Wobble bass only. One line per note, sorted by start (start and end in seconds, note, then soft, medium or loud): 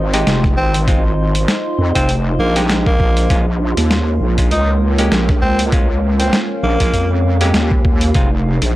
0.00 0.25 G#1 medium
0.27 0.55 F1 medium
0.57 1.46 G#1 medium
1.78 1.93 F2 loud
1.96 2.37 F1 medium
2.39 2.97 A#1 loud
3.00 3.28 A#1 loud
3.30 3.75 A#1 medium
3.77 4.19 D#2 loud
4.20 4.49 A#1 loud
4.51 5.10 C#2 medium
5.12 5.40 A#1 loud
5.42 6.31 C#2 loud
6.63 6.77 A#1 medium
6.80 6.92 A#1 loud
6.93 7.52 F2 medium
7.54 8.13 D#2 medium
8.15 8.59 F1 loud
8.62 8.76 A#1 loud